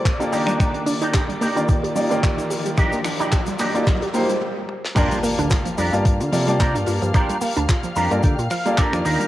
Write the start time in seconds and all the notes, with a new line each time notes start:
Already playing: D5 D6, riser
0.05 A#3, muted clean electric guitar stroke, kick, clap, closed hi-hat, cabasa
0.20 A#3 D4 F4 G4 A4 D5, muted clean electric guitar stroke, closed hi-hat, cabasa
0.31 D#3 A#3 D4 D#4 F4 G4 D5, open hi-hat, cabasa
0.47 G3, finger snap, closed hi-hat, cabasa
0.59 G3, finger snap, kick, closed hi-hat, cabasa
0.74 A#3, closed hi-hat
0.86 D4, open hi-hat, cabasa
1.01 D4 D#4 G4, closed hi-hat, cabasa
1.14 G4, kick, clap, closed hi-hat, cabasa
1.29 G3, closed hi-hat
1.41 A#3 D4 D#4 G4, open hi-hat, cabasa
1.56 D#3 A#3 D4 F4 G4 D5, closed hi-hat, cabasa
1.68 D#4, muted clean electric guitar stroke, kick, closed hi-hat, cabasa
1.83 G4, muted clean electric guitar stroke, closed hi-hat
1.95 G3 A#3 D#4 F4 G4 D5, open hi-hat, cabasa
2.10 D#3 A#3 F4 G4 D5, closed hi-hat, cabasa
2.23 D4, muted clean electric guitar stroke, kick, clap, closed hi-hat, cabasa
2.38 D#4, closed hi-hat, cabasa
2.50 G4, open hi-hat, cabasa
2.66 G3, muted clean electric guitar stroke, closed hi-hat, cabasa
2.77 G3 D4 D#4 G4, finger snap, kick, closed hi-hat, cabasa
2.92 A#3, closed hi-hat, cabasa
3.04 D4, finger snap, open hi-hat, cabasa
3.19 D4 D#4 G4, closed hi-hat, cabasa
3.32 G4, kick, clap, closed hi-hat, cabasa
3.46 G3, closed hi-hat, cabasa
3.59 A#3 D4 D#4 G4, clap, open hi-hat, cabasa
3.74 A#3 D4 D#4 F4 G4 D5, closed hi-hat, cabasa
3.86 D#4, muted clean electric guitar stroke, kick, clap, closed hi-hat, cabasa
4.02 G4, muted clean electric guitar stroke, closed hi-hat
4.14 A#3 D#4 F4 G4 C5, open hi-hat, cabasa
4.29 G3, closed hi-hat, cabasa
4.69 high tom
4.85 snare
4.95 G2 F3 A#3 D4 F4 G4 A#4 D5 F5 A5 F6, finger snap, kick, closed hi-hat, crash, impact, cabasa
5.11 G3, closed hi-hat, cabasa
5.23 A#3, open hi-hat, cabasa
5.38 D2 D4, muted clean electric guitar stroke, closed hi-hat, cabasa
5.50 F4, muted clean electric guitar stroke, kick, clap, closed hi-hat, cabasa
5.65 F3, closed hi-hat, cabasa
5.77 F2 G3 D4 F4 G4 A#4, open hi-hat, cabasa
5.93 G2 A#3 F4 G4 D5 A5, closed hi-hat, cabasa
6.05 D4, muted clean electric guitar stroke, kick, closed hi-hat, cabasa
6.20 D3 F4, closed hi-hat, cabasa
6.32 C3 F3 A#3 F4 G4 A4 D5, open hi-hat, cabasa
6.47 G3 A#3 F4 G4 D5 A5, muted clean electric guitar stroke, closed hi-hat, cabasa
6.59 A#3 D4 F4 G4 A#4, kick, clap, closed hi-hat, cabasa
6.75 G2 D4, closed hi-hat, cabasa
6.86 G2 F4, muted clean electric guitar stroke, open hi-hat, cabasa
7.02 G2 F3, closed hi-hat, cabasa
7.14 F3 D4 F4 G4 A#4, finger snap, kick, closed hi-hat, cabasa
7.29 G3, closed hi-hat, cabasa
7.41 A#3, open hi-hat, cabasa
7.56 D2 D4, muted clean electric guitar stroke, closed hi-hat, cabasa
7.69 F4, muted clean electric guitar stroke, kick, clap, closed hi-hat, cabasa
7.83 F3, closed hi-hat, cabasa
7.96 F2 G3 D4 F4 G4 A#4 A#5, open hi-hat, cabasa
8.11 G2 A#3 F4 G4 A4 D5, closed hi-hat, cabasa
8.23 D3 D4 G5, muted clean electric guitar stroke, kick, closed hi-hat, cabasa
8.38 A#2 F4, closed hi-hat, cabasa
8.50 F3 F5, finger snap, open hi-hat, cabasa
8.65 G3 A#3 F4 G4 A4 D5, muted clean electric guitar stroke, closed hi-hat, cabasa
8.77 A#3 D4 F4 G4 A#4 D5, kick, clap, closed hi-hat, cabasa
8.92 F2 D#3 A#3 D4 F4 G4 D5, finger snap, closed hi-hat, cabasa
9.05 D#2 D4 D#4 G4 A#4, open hi-hat, cabasa
9.20 G3, closed hi-hat, cabasa